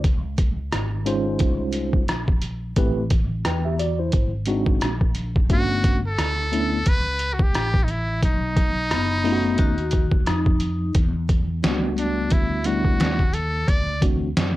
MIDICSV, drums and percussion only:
0, 0, Header, 1, 2, 480
1, 0, Start_track
1, 0, Tempo, 681818
1, 30, Time_signature, 4, 2, 24, 8
1, 10254, End_track
2, 0, Start_track
2, 0, Title_t, "Drums"
2, 29, Note_on_c, 9, 36, 104
2, 29, Note_on_c, 9, 42, 69
2, 99, Note_off_c, 9, 42, 0
2, 100, Note_off_c, 9, 36, 0
2, 267, Note_on_c, 9, 42, 81
2, 269, Note_on_c, 9, 36, 101
2, 338, Note_off_c, 9, 42, 0
2, 339, Note_off_c, 9, 36, 0
2, 510, Note_on_c, 9, 37, 104
2, 512, Note_on_c, 9, 42, 79
2, 581, Note_off_c, 9, 37, 0
2, 582, Note_off_c, 9, 42, 0
2, 748, Note_on_c, 9, 42, 66
2, 818, Note_off_c, 9, 42, 0
2, 979, Note_on_c, 9, 42, 85
2, 988, Note_on_c, 9, 36, 90
2, 1050, Note_off_c, 9, 42, 0
2, 1058, Note_off_c, 9, 36, 0
2, 1215, Note_on_c, 9, 42, 73
2, 1285, Note_off_c, 9, 42, 0
2, 1360, Note_on_c, 9, 36, 89
2, 1430, Note_off_c, 9, 36, 0
2, 1466, Note_on_c, 9, 42, 69
2, 1471, Note_on_c, 9, 37, 93
2, 1536, Note_off_c, 9, 42, 0
2, 1542, Note_off_c, 9, 37, 0
2, 1604, Note_on_c, 9, 36, 83
2, 1675, Note_off_c, 9, 36, 0
2, 1701, Note_on_c, 9, 42, 68
2, 1771, Note_off_c, 9, 42, 0
2, 1945, Note_on_c, 9, 42, 84
2, 1947, Note_on_c, 9, 36, 105
2, 2015, Note_off_c, 9, 42, 0
2, 2017, Note_off_c, 9, 36, 0
2, 2185, Note_on_c, 9, 42, 84
2, 2187, Note_on_c, 9, 36, 108
2, 2255, Note_off_c, 9, 42, 0
2, 2258, Note_off_c, 9, 36, 0
2, 2428, Note_on_c, 9, 37, 104
2, 2430, Note_on_c, 9, 42, 73
2, 2499, Note_off_c, 9, 37, 0
2, 2500, Note_off_c, 9, 42, 0
2, 2671, Note_on_c, 9, 42, 67
2, 2742, Note_off_c, 9, 42, 0
2, 2902, Note_on_c, 9, 42, 97
2, 2910, Note_on_c, 9, 36, 94
2, 2972, Note_off_c, 9, 42, 0
2, 2980, Note_off_c, 9, 36, 0
2, 3136, Note_on_c, 9, 42, 71
2, 3207, Note_off_c, 9, 42, 0
2, 3283, Note_on_c, 9, 36, 89
2, 3353, Note_off_c, 9, 36, 0
2, 3388, Note_on_c, 9, 42, 75
2, 3393, Note_on_c, 9, 37, 89
2, 3458, Note_off_c, 9, 42, 0
2, 3464, Note_off_c, 9, 37, 0
2, 3527, Note_on_c, 9, 36, 86
2, 3597, Note_off_c, 9, 36, 0
2, 3623, Note_on_c, 9, 42, 68
2, 3694, Note_off_c, 9, 42, 0
2, 3772, Note_on_c, 9, 36, 83
2, 3843, Note_off_c, 9, 36, 0
2, 3869, Note_on_c, 9, 42, 74
2, 3871, Note_on_c, 9, 36, 108
2, 3940, Note_off_c, 9, 42, 0
2, 3942, Note_off_c, 9, 36, 0
2, 4111, Note_on_c, 9, 42, 81
2, 4112, Note_on_c, 9, 36, 105
2, 4182, Note_off_c, 9, 36, 0
2, 4182, Note_off_c, 9, 42, 0
2, 4354, Note_on_c, 9, 37, 105
2, 4356, Note_on_c, 9, 42, 80
2, 4425, Note_off_c, 9, 37, 0
2, 4426, Note_off_c, 9, 42, 0
2, 4596, Note_on_c, 9, 42, 66
2, 4667, Note_off_c, 9, 42, 0
2, 4828, Note_on_c, 9, 42, 93
2, 4833, Note_on_c, 9, 36, 104
2, 4898, Note_off_c, 9, 42, 0
2, 4904, Note_off_c, 9, 36, 0
2, 5063, Note_on_c, 9, 42, 73
2, 5133, Note_off_c, 9, 42, 0
2, 5205, Note_on_c, 9, 36, 97
2, 5275, Note_off_c, 9, 36, 0
2, 5312, Note_on_c, 9, 42, 74
2, 5317, Note_on_c, 9, 37, 91
2, 5382, Note_off_c, 9, 42, 0
2, 5388, Note_off_c, 9, 37, 0
2, 5448, Note_on_c, 9, 36, 88
2, 5519, Note_off_c, 9, 36, 0
2, 5547, Note_on_c, 9, 42, 58
2, 5618, Note_off_c, 9, 42, 0
2, 5791, Note_on_c, 9, 36, 96
2, 5793, Note_on_c, 9, 42, 79
2, 5861, Note_off_c, 9, 36, 0
2, 5863, Note_off_c, 9, 42, 0
2, 6030, Note_on_c, 9, 36, 106
2, 6031, Note_on_c, 9, 42, 84
2, 6100, Note_off_c, 9, 36, 0
2, 6101, Note_off_c, 9, 42, 0
2, 6273, Note_on_c, 9, 37, 104
2, 6275, Note_on_c, 9, 42, 73
2, 6344, Note_off_c, 9, 37, 0
2, 6345, Note_off_c, 9, 42, 0
2, 6512, Note_on_c, 9, 46, 49
2, 6582, Note_off_c, 9, 46, 0
2, 6743, Note_on_c, 9, 42, 85
2, 6750, Note_on_c, 9, 36, 92
2, 6814, Note_off_c, 9, 42, 0
2, 6820, Note_off_c, 9, 36, 0
2, 6884, Note_on_c, 9, 42, 41
2, 6955, Note_off_c, 9, 42, 0
2, 6976, Note_on_c, 9, 42, 71
2, 6991, Note_on_c, 9, 36, 86
2, 7047, Note_off_c, 9, 42, 0
2, 7061, Note_off_c, 9, 36, 0
2, 7121, Note_on_c, 9, 36, 92
2, 7191, Note_off_c, 9, 36, 0
2, 7226, Note_on_c, 9, 42, 76
2, 7232, Note_on_c, 9, 37, 100
2, 7297, Note_off_c, 9, 42, 0
2, 7302, Note_off_c, 9, 37, 0
2, 7365, Note_on_c, 9, 36, 81
2, 7435, Note_off_c, 9, 36, 0
2, 7462, Note_on_c, 9, 42, 67
2, 7532, Note_off_c, 9, 42, 0
2, 7706, Note_on_c, 9, 42, 84
2, 7708, Note_on_c, 9, 36, 112
2, 7776, Note_off_c, 9, 42, 0
2, 7779, Note_off_c, 9, 36, 0
2, 7949, Note_on_c, 9, 36, 107
2, 7949, Note_on_c, 9, 42, 81
2, 8019, Note_off_c, 9, 36, 0
2, 8019, Note_off_c, 9, 42, 0
2, 8194, Note_on_c, 9, 38, 108
2, 8195, Note_on_c, 9, 42, 87
2, 8264, Note_off_c, 9, 38, 0
2, 8266, Note_off_c, 9, 42, 0
2, 8433, Note_on_c, 9, 42, 61
2, 8504, Note_off_c, 9, 42, 0
2, 8662, Note_on_c, 9, 42, 89
2, 8671, Note_on_c, 9, 36, 92
2, 8733, Note_off_c, 9, 42, 0
2, 8741, Note_off_c, 9, 36, 0
2, 8901, Note_on_c, 9, 42, 76
2, 8971, Note_off_c, 9, 42, 0
2, 9044, Note_on_c, 9, 36, 91
2, 9114, Note_off_c, 9, 36, 0
2, 9151, Note_on_c, 9, 42, 78
2, 9157, Note_on_c, 9, 38, 91
2, 9222, Note_off_c, 9, 42, 0
2, 9227, Note_off_c, 9, 38, 0
2, 9287, Note_on_c, 9, 36, 81
2, 9358, Note_off_c, 9, 36, 0
2, 9388, Note_on_c, 9, 42, 62
2, 9458, Note_off_c, 9, 42, 0
2, 9631, Note_on_c, 9, 36, 98
2, 9632, Note_on_c, 9, 42, 77
2, 9701, Note_off_c, 9, 36, 0
2, 9702, Note_off_c, 9, 42, 0
2, 9870, Note_on_c, 9, 36, 101
2, 9871, Note_on_c, 9, 42, 81
2, 9941, Note_off_c, 9, 36, 0
2, 9942, Note_off_c, 9, 42, 0
2, 10116, Note_on_c, 9, 38, 104
2, 10117, Note_on_c, 9, 42, 86
2, 10186, Note_off_c, 9, 38, 0
2, 10188, Note_off_c, 9, 42, 0
2, 10254, End_track
0, 0, End_of_file